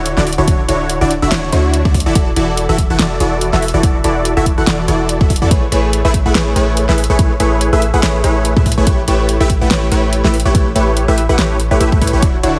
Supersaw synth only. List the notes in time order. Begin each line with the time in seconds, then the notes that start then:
Already playing: D3 D4 E4 F#4 C#5
0.17 D3 D4 E4 F#4 D5
0.38 D3 D4 E4 F#4 C#5
0.47 D3 D4 E4 F#4 C#5
0.68 D3 D4 E4 F#4 C#5
1.01 D3 D4 E4 F#4 D5
1.22 D3 D4 E4 F#4 E5
1.31 D3 D4 E4 F#4 C#5
1.52 D3 D4 E4 F#4 C#5
1.85 D3 D4 E4 F#4 D5
2.06 E3 E4 F#4 A4 D5
2.15 E3 E4 F#4 A4 D5
2.36 E3 E4 F#4 A4 D5
2.69 E3 E4 F#4 A4 E5
2.90 E3 E4 F#4 A4 F#5
2.99 E3 E4 F#4 A4 D5
3.20 E3 E4 F#4 A4 D5
3.53 E3 E4 F#4 A4 E5
3.74 E3 E4 F#4 A4 D5
3.83 E3 E4 F#4 A4 D5
4.04 E3 E4 F#4 A4 D5
4.37 E3 E4 F#4 A4 E5
4.58 E3 E4 F#4 A4 F#5
4.67 E3 E4 F#4 A4 D5
4.88 E3 E4 F#4 A4 D5
5.21 E3 E4 F#4 A4 E5
5.42 E3 E4 F#4 A4 D5
5.51 A3 E4 B4 C#5
5.72 A3 E4 G#4 B4 C#5
6.05 A3 E4 G#4 B4 E5
6.26 A3 E4 G#4 B4 F#5
6.35 A3 E4 G#4 B4 C#5
6.56 A3 E4 G#4 B4 C#5
6.89 A3 E4 G#4 B4 E5
7.10 A3 E4 G#4 B4 C#5
7.19 A3 E4 G#4 C#5
7.40 A3 E4 G#4 B4 C#5
7.73 A3 E4 G#4 B4 E5
7.94 A3 E4 G#4 B4 F#5
8.03 A3 E4 G#4 B4 C#5
8.24 A3 E4 G#4 B4 C#5
8.56 A3 E4 G#4 B4 E5
8.78 A3 E4 G#4 B4 C#5
8.87 A3 E4 G4 B4 C#5
9.08 A3 E4 G4 B4 C#5
9.40 A3 E4 G4 B4 E5
9.61 A3 E4 G4 B4 F#5
9.71 A3 E4 G4 B4 C#5
9.92 A3 E4 G4 B4 C#5
10.24 A3 E4 G4 B4 E5
10.45 A3 E4 G4 B4 C#5
10.55 A3 E4 C#5
10.75 A3 E4 G4 B4 C#5
11.08 A3 E4 G4 B4 E5
11.29 A3 E4 G4 B4 F#5
11.38 A3 E4 G4 B4 C#5
11.71 A3 E4 G4 B4 C#5
11.80 A3 E4 G4 B4 E5
11.92 A3 E4 G4 B4 E5
12.01 A3 E4 G4 B4 C#5
12.13 A3 E4 G4 B4 C#5
12.22 D3 D4 E4 F#4 C#5
12.43 D3 D4 E4 F#4 C#5